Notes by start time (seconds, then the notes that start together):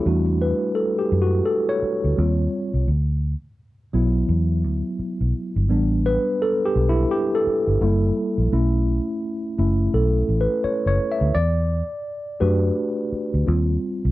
Already playing: E4
0.05 E2 G3 A3 D4 F#4
0.42 B4
0.75 A4
0.99 G4
1.12 F#2
1.22 F#4
1.45 A4
1.69 C#5
1.82 muted fingered electric bass stroke
2.04 D2
2.17 D#2 G3 C4 F4
2.74 C2
2.88 D2
3.93 B1 F#3 B3 E4
4.29 E2
4.64 D2
4.99 muted fingered electric bass stroke
5.21 B1
5.56 G1
5.69 A1 G3 B3 D4
6.06 B4
6.42 A4
6.65 G4
6.76 B1
6.89 E4
7.11 G4
7.35 A4
7.47 muted fingered electric bass stroke
7.67 G1
7.81 F#1 G3 A#3 E4
8.38 A#1
8.52 B1 A3 C#4 E4
9.58 F#1 A3 C#4 E4
9.94 B1 A4
10.29 A1
10.41 B4
10.64 C#5, muted fingered electric bass stroke
10.86 F#1 C#5
11.12 E5
11.21 D2
11.35 E2 D5
12.40 F#2 A3 D4 F#4 G4 B4
13.12 muted fingered electric bass stroke
13.34 D2
13.46 D#2 G3 C4 F4
14.05 C2